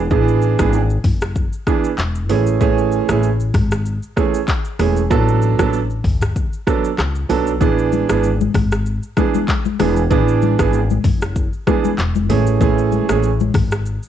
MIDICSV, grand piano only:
0, 0, Header, 1, 2, 480
1, 0, Start_track
1, 0, Key_signature, 3, "major"
1, 0, Tempo, 625000
1, 82, Time_signature, 4, 2, 24, 8
1, 10818, End_track
2, 0, Start_track
2, 0, Title_t, "Grand piano"
2, 0, Program_c, 0, 0
2, 80, Note_on_c, 0, 52, 94
2, 82, Note_on_c, 0, 59, 89
2, 83, Note_on_c, 0, 62, 87
2, 85, Note_on_c, 0, 68, 107
2, 422, Note_off_c, 0, 52, 0
2, 422, Note_off_c, 0, 59, 0
2, 423, Note_off_c, 0, 62, 0
2, 424, Note_off_c, 0, 68, 0
2, 453, Note_on_c, 0, 52, 82
2, 454, Note_on_c, 0, 59, 72
2, 456, Note_on_c, 0, 62, 78
2, 458, Note_on_c, 0, 68, 93
2, 593, Note_off_c, 0, 52, 0
2, 594, Note_off_c, 0, 59, 0
2, 595, Note_off_c, 0, 62, 0
2, 596, Note_off_c, 0, 68, 0
2, 1281, Note_on_c, 0, 52, 81
2, 1283, Note_on_c, 0, 59, 71
2, 1284, Note_on_c, 0, 62, 71
2, 1287, Note_on_c, 0, 68, 85
2, 1440, Note_off_c, 0, 52, 0
2, 1441, Note_off_c, 0, 59, 0
2, 1441, Note_off_c, 0, 62, 0
2, 1442, Note_off_c, 0, 68, 0
2, 1760, Note_on_c, 0, 52, 81
2, 1761, Note_on_c, 0, 57, 72
2, 1763, Note_on_c, 0, 61, 76
2, 1765, Note_on_c, 0, 68, 89
2, 1984, Note_off_c, 0, 52, 0
2, 1984, Note_off_c, 0, 57, 0
2, 1985, Note_off_c, 0, 61, 0
2, 1986, Note_off_c, 0, 68, 0
2, 2001, Note_on_c, 0, 52, 94
2, 2001, Note_on_c, 0, 57, 86
2, 2003, Note_on_c, 0, 61, 93
2, 2006, Note_on_c, 0, 68, 106
2, 2342, Note_off_c, 0, 52, 0
2, 2342, Note_off_c, 0, 57, 0
2, 2343, Note_off_c, 0, 61, 0
2, 2344, Note_off_c, 0, 68, 0
2, 2370, Note_on_c, 0, 52, 84
2, 2372, Note_on_c, 0, 57, 78
2, 2373, Note_on_c, 0, 61, 77
2, 2375, Note_on_c, 0, 68, 89
2, 2512, Note_off_c, 0, 52, 0
2, 2513, Note_off_c, 0, 57, 0
2, 2514, Note_off_c, 0, 61, 0
2, 2514, Note_off_c, 0, 68, 0
2, 3198, Note_on_c, 0, 52, 75
2, 3199, Note_on_c, 0, 57, 72
2, 3201, Note_on_c, 0, 61, 71
2, 3203, Note_on_c, 0, 68, 87
2, 3358, Note_off_c, 0, 52, 0
2, 3359, Note_off_c, 0, 57, 0
2, 3360, Note_off_c, 0, 61, 0
2, 3361, Note_off_c, 0, 68, 0
2, 3680, Note_on_c, 0, 52, 79
2, 3682, Note_on_c, 0, 57, 73
2, 3683, Note_on_c, 0, 61, 69
2, 3684, Note_on_c, 0, 68, 86
2, 3839, Note_off_c, 0, 52, 0
2, 3840, Note_off_c, 0, 57, 0
2, 3840, Note_off_c, 0, 61, 0
2, 3841, Note_off_c, 0, 68, 0
2, 3920, Note_on_c, 0, 54, 95
2, 3922, Note_on_c, 0, 59, 90
2, 3924, Note_on_c, 0, 62, 88
2, 3924, Note_on_c, 0, 69, 105
2, 4261, Note_off_c, 0, 54, 0
2, 4262, Note_off_c, 0, 59, 0
2, 4263, Note_off_c, 0, 62, 0
2, 4263, Note_off_c, 0, 69, 0
2, 4293, Note_on_c, 0, 54, 85
2, 4295, Note_on_c, 0, 59, 77
2, 4295, Note_on_c, 0, 62, 76
2, 4297, Note_on_c, 0, 69, 91
2, 4433, Note_off_c, 0, 54, 0
2, 4434, Note_off_c, 0, 59, 0
2, 4435, Note_off_c, 0, 62, 0
2, 4435, Note_off_c, 0, 69, 0
2, 5119, Note_on_c, 0, 54, 75
2, 5120, Note_on_c, 0, 59, 74
2, 5122, Note_on_c, 0, 62, 68
2, 5123, Note_on_c, 0, 69, 83
2, 5279, Note_off_c, 0, 54, 0
2, 5279, Note_off_c, 0, 59, 0
2, 5280, Note_off_c, 0, 62, 0
2, 5281, Note_off_c, 0, 69, 0
2, 5599, Note_on_c, 0, 54, 77
2, 5600, Note_on_c, 0, 59, 75
2, 5601, Note_on_c, 0, 62, 75
2, 5603, Note_on_c, 0, 69, 87
2, 5759, Note_off_c, 0, 54, 0
2, 5759, Note_off_c, 0, 59, 0
2, 5760, Note_off_c, 0, 62, 0
2, 5761, Note_off_c, 0, 69, 0
2, 5839, Note_on_c, 0, 52, 94
2, 5840, Note_on_c, 0, 59, 85
2, 5841, Note_on_c, 0, 62, 90
2, 5844, Note_on_c, 0, 68, 104
2, 6181, Note_off_c, 0, 52, 0
2, 6181, Note_off_c, 0, 59, 0
2, 6182, Note_off_c, 0, 62, 0
2, 6183, Note_off_c, 0, 68, 0
2, 6212, Note_on_c, 0, 52, 81
2, 6214, Note_on_c, 0, 59, 76
2, 6217, Note_on_c, 0, 62, 73
2, 6218, Note_on_c, 0, 68, 90
2, 6353, Note_off_c, 0, 52, 0
2, 6354, Note_off_c, 0, 59, 0
2, 6355, Note_off_c, 0, 62, 0
2, 6356, Note_off_c, 0, 68, 0
2, 7041, Note_on_c, 0, 52, 74
2, 7042, Note_on_c, 0, 59, 70
2, 7043, Note_on_c, 0, 62, 74
2, 7045, Note_on_c, 0, 68, 85
2, 7199, Note_off_c, 0, 52, 0
2, 7200, Note_off_c, 0, 59, 0
2, 7201, Note_off_c, 0, 62, 0
2, 7201, Note_off_c, 0, 68, 0
2, 7520, Note_on_c, 0, 52, 79
2, 7522, Note_on_c, 0, 59, 72
2, 7524, Note_on_c, 0, 62, 71
2, 7526, Note_on_c, 0, 68, 87
2, 7679, Note_off_c, 0, 52, 0
2, 7680, Note_off_c, 0, 59, 0
2, 7681, Note_off_c, 0, 62, 0
2, 7682, Note_off_c, 0, 68, 0
2, 7759, Note_on_c, 0, 52, 91
2, 7761, Note_on_c, 0, 59, 93
2, 7762, Note_on_c, 0, 62, 91
2, 7764, Note_on_c, 0, 68, 104
2, 8101, Note_off_c, 0, 52, 0
2, 8102, Note_off_c, 0, 59, 0
2, 8103, Note_off_c, 0, 62, 0
2, 8103, Note_off_c, 0, 68, 0
2, 8133, Note_on_c, 0, 52, 84
2, 8135, Note_on_c, 0, 59, 74
2, 8136, Note_on_c, 0, 62, 75
2, 8138, Note_on_c, 0, 68, 92
2, 8274, Note_off_c, 0, 52, 0
2, 8274, Note_off_c, 0, 59, 0
2, 8275, Note_off_c, 0, 62, 0
2, 8276, Note_off_c, 0, 68, 0
2, 8960, Note_on_c, 0, 52, 76
2, 8961, Note_on_c, 0, 59, 71
2, 8962, Note_on_c, 0, 62, 71
2, 8964, Note_on_c, 0, 68, 86
2, 9119, Note_off_c, 0, 52, 0
2, 9120, Note_off_c, 0, 59, 0
2, 9120, Note_off_c, 0, 62, 0
2, 9121, Note_off_c, 0, 68, 0
2, 9440, Note_on_c, 0, 52, 79
2, 9442, Note_on_c, 0, 57, 74
2, 9444, Note_on_c, 0, 61, 74
2, 9445, Note_on_c, 0, 68, 90
2, 9664, Note_off_c, 0, 52, 0
2, 9665, Note_off_c, 0, 57, 0
2, 9666, Note_off_c, 0, 61, 0
2, 9666, Note_off_c, 0, 68, 0
2, 9681, Note_on_c, 0, 52, 96
2, 9682, Note_on_c, 0, 57, 88
2, 9683, Note_on_c, 0, 61, 90
2, 9686, Note_on_c, 0, 68, 104
2, 10022, Note_off_c, 0, 52, 0
2, 10022, Note_off_c, 0, 57, 0
2, 10023, Note_off_c, 0, 61, 0
2, 10024, Note_off_c, 0, 68, 0
2, 10055, Note_on_c, 0, 52, 81
2, 10056, Note_on_c, 0, 57, 78
2, 10057, Note_on_c, 0, 61, 80
2, 10059, Note_on_c, 0, 68, 96
2, 10194, Note_off_c, 0, 52, 0
2, 10195, Note_off_c, 0, 57, 0
2, 10195, Note_off_c, 0, 61, 0
2, 10196, Note_off_c, 0, 68, 0
2, 10818, End_track
0, 0, End_of_file